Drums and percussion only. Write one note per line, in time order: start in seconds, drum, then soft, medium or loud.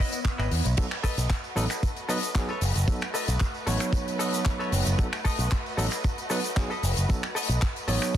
0.00 kick medium
0.12 closed hi-hat medium
0.12 tambourine medium
0.25 kick loud
0.25 clap loud
0.25 closed hi-hat medium
0.40 finger snap medium
0.40 tambourine soft
0.51 open hi-hat loud
0.65 closed hi-hat medium
0.65 tambourine medium
0.77 kick loud
0.77 closed hi-hat medium
0.77 tambourine medium
0.77 crash medium
0.77 shaker soft
0.91 finger snap medium
0.91 tambourine soft
1.04 kick medium
1.04 open hi-hat medium
1.04 shaker medium
1.18 closed hi-hat medium
1.18 tambourine medium
1.18 shaker medium
1.30 kick loud
1.30 clap loud
1.30 closed hi-hat medium
1.30 tambourine medium
1.30 shaker soft
1.44 tambourine soft
1.57 open hi-hat loud
1.57 shaker medium
1.70 finger snap medium
1.70 closed hi-hat medium
1.70 tambourine medium
1.70 shaker medium
1.83 kick loud
1.83 closed hi-hat medium
1.83 tambourine medium
1.83 shaker soft
1.96 closed hi-hat soft
1.96 tambourine soft
2.09 open hi-hat loud
2.09 shaker medium
2.23 closed hi-hat medium
2.23 tambourine medium
2.23 shaker medium
2.35 kick loud
2.35 clap loud
2.35 closed hi-hat medium
2.35 tambourine medium
2.35 shaker medium
2.49 tambourine soft
2.61 open hi-hat loud
2.61 shaker medium
2.75 closed hi-hat medium
2.75 tambourine medium
2.75 shaker medium
2.88 kick loud
2.88 closed hi-hat medium
2.88 tambourine medium
2.88 shaker soft
3.01 finger snap medium
3.01 tambourine soft
3.14 open hi-hat loud
3.14 shaker medium
3.28 closed hi-hat medium
3.28 tambourine medium
3.28 shaker medium
3.40 kick loud
3.40 clap loud
3.40 closed hi-hat medium
3.40 tambourine medium
3.40 shaker soft
3.54 tambourine soft
3.67 open hi-hat loud
3.67 shaker medium
3.80 finger snap medium
3.80 closed hi-hat medium
3.80 tambourine medium
3.80 shaker medium
3.93 kick loud
3.93 closed hi-hat medium
3.93 tambourine medium
3.93 shaker medium
4.08 closed hi-hat soft
4.08 tambourine soft
4.20 open hi-hat loud
4.20 shaker medium
4.34 closed hi-hat medium
4.34 tambourine medium
4.34 shaker medium
4.45 kick loud
4.45 clap loud
4.45 closed hi-hat medium
4.45 tambourine medium
4.45 shaker soft
4.60 tambourine soft
4.72 open hi-hat loud
4.72 shaker medium
4.86 closed hi-hat medium
4.86 tambourine medium
4.86 shaker medium
4.99 kick loud
4.99 closed hi-hat medium
4.99 tambourine medium
4.99 shaker soft
5.13 finger snap medium
5.13 tambourine soft
5.25 kick medium
5.25 open hi-hat loud
5.25 shaker medium
5.39 closed hi-hat medium
5.39 tambourine medium
5.39 shaker medium
5.51 kick loud
5.51 clap loud
5.51 closed hi-hat medium
5.51 tambourine medium
5.66 tambourine soft
5.78 open hi-hat loud
5.78 shaker medium
5.91 finger snap medium
5.91 closed hi-hat medium
5.91 tambourine medium
5.91 shaker medium
6.04 kick loud
6.04 closed hi-hat medium
6.04 tambourine medium
6.04 shaker soft
6.18 closed hi-hat soft
6.18 tambourine soft
6.30 open hi-hat loud
6.30 shaker medium
6.44 closed hi-hat medium
6.44 tambourine medium
6.44 shaker medium
6.57 kick loud
6.57 clap loud
6.57 closed hi-hat medium
6.57 tambourine medium
6.57 shaker soft
6.71 tambourine soft
6.83 open hi-hat loud
6.83 shaker medium
6.97 closed hi-hat medium
6.97 tambourine medium
6.97 shaker medium
7.09 kick loud
7.09 closed hi-hat medium
7.09 tambourine medium
7.09 shaker medium
7.23 finger snap medium
7.23 tambourine soft
7.36 open hi-hat loud
7.36 shaker medium
7.49 closed hi-hat medium
7.49 tambourine medium
7.49 shaker medium
7.62 kick loud
7.62 clap loud
7.62 closed hi-hat medium
7.62 tambourine medium
7.62 shaker soft
7.76 closed hi-hat soft
7.76 tambourine soft
7.88 open hi-hat loud
7.88 shaker medium
8.02 finger snap medium
8.02 closed hi-hat medium
8.02 tambourine medium
8.02 shaker medium